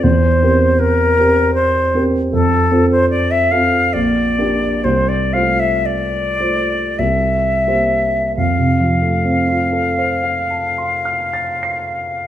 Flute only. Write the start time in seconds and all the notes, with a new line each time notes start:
0.03 C5
0.79 A#4
1.55 C5
2.31 A4
2.92 C5
3.10 D5
3.31 E5
3.51 F5
3.93 D5
4.84 C5
5.09 D5
5.33 F5
5.60 E5
5.86 D5
6.99 E5
8.37 F5